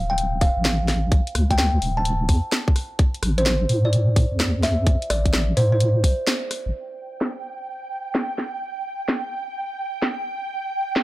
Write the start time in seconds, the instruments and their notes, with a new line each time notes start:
Already playing: wobble bass D1
0.10 kalimba G5
0.18 closed hi-hat
0.41 kalimba F5, kick, open hi-hat
0.57 wobble bass A1
0.65 snare, closed hi-hat
0.88 cross-stick, snare, open hi-hat
1.12 kick, closed hi-hat
1.27 closed hi-hat
1.35 wobble bass D2, cross-stick, open hi-hat
1.51 kalimba G5, kick, closed hi-hat
1.58 kalimba G5, snare, closed hi-hat
1.82 wobble bass D1, open hi-hat
1.97 kalimba A5
2.05 closed hi-hat
2.29 wobble bass F2, kick, open hi-hat
2.52 snare, closed hi-hat
2.68 kick
2.76 cross-stick, open hi-hat
2.99 kick, closed hi-hat
3.14 closed hi-hat
3.23 wobble bass A1, cross-stick, open hi-hat
3.38 kalimba C5, closed hi-hat
3.46 snare, closed hi-hat
3.69 wobble bass A2, open hi-hat
3.85 kalimba D5
3.93 closed hi-hat
4.16 kick, open hi-hat
4.32 wobble bass E2
4.40 snare, closed hi-hat
4.63 kalimba E5, cross-stick, snare, open hi-hat
4.87 kick, closed hi-hat
5.02 closed hi-hat
5.10 wobble bass A1, kalimba D5, cross-stick, open hi-hat
5.26 kick, closed hi-hat
5.33 snare, closed hi-hat
5.57 wobble bass A2, kalimba C5, open hi-hat
5.72 kalimba C5
5.80 closed hi-hat
6.04 wobble bass C2, kick, open hi-hat
6.27 snare, closed hi-hat
6.51 cross-stick, open hi-hat
6.66 wobble bass A1
6.74 ambient pad G5
7.21 snare
8.15 snare
8.38 snare
9.09 snare
10.02 snare
10.96 snare